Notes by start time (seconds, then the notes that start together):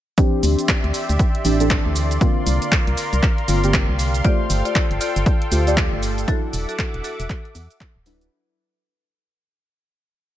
0.17 E3 C4 D4 G4 D5 E5 C6, kick, closed hi-hat, shaker
0.43 D2, open hi-hat, shaker
0.59 closed hi-hat, shaker
0.69 kick, clap, closed hi-hat, shaker
0.84 D2, closed hi-hat
0.94 open hi-hat, shaker
1.09 D2, closed hi-hat, shaker
1.19 kick, closed hi-hat, shaker
1.35 closed hi-hat
1.45 A1 E3 C4 D4 G4, open hi-hat, shaker
1.60 E3 C4 D4 A4, closed hi-hat, shaker
1.70 kick, clap, closed hi-hat, shaker
1.86 D2
1.96 open hi-hat, shaker
2.11 closed hi-hat, shaker
2.21 D3 A#3 C4 F4 A#4 F5, kick, closed hi-hat, shaker
2.46 C2, open hi-hat, shaker
2.62 closed hi-hat, shaker
2.72 kick, clap, closed hi-hat, shaker
2.87 C2, closed hi-hat
2.97 open hi-hat, shaker
3.13 C2, closed hi-hat, shaker
3.23 kick, clap, closed hi-hat, shaker
3.38 closed hi-hat
3.48 G1 D3 A#3 C4 F4, open hi-hat, shaker
3.63 D3 A#3 C4 G4, closed hi-hat, shaker
3.74 kick, clap, closed hi-hat, shaker
3.89 C2
3.99 open hi-hat, shaker
4.15 closed hi-hat, shaker
4.24 A3 F4 G4 A4 C5 D5 G5, kick, closed hi-hat, shaker
4.50 G1, open hi-hat, shaker
4.65 F4 D5, closed hi-hat, shaker
4.75 kick, clap, closed hi-hat, shaker
4.91 G1, closed hi-hat
5.01 F4 D5, open hi-hat, shaker
5.16 G1, closed hi-hat, shaker
5.26 kick, closed hi-hat, shaker
5.42 closed hi-hat
5.52 D2 A3 F4 G4 C5, open hi-hat, shaker
5.67 A3 F4 G4 D5, closed hi-hat, shaker
5.77 kick, clap, closed hi-hat, shaker
5.92 G1
6.03 open hi-hat, shaker
6.18 closed hi-hat, shaker
6.28 F#3 D4 E4 F#4 A4 E5 F#5 D6, kick, closed hi-hat, shaker
6.53 E1, open hi-hat, shaker
6.69 F#4 A4, closed hi-hat, shaker
6.79 kick, clap, closed hi-hat, shaker
6.94 E1, closed hi-hat
7.04 F#4 A4, open hi-hat, shaker
7.20 E1, closed hi-hat, shaker
7.30 kick, clap, closed hi-hat, shaker
7.45 closed hi-hat
7.55 E2, open hi-hat, shaker
7.71 closed hi-hat, shaker
7.80 kick, clap, closed hi-hat, shaker
7.96 D1
8.06 F#3 D4 E4 B4, open hi-hat, shaker
8.21 closed hi-hat, shaker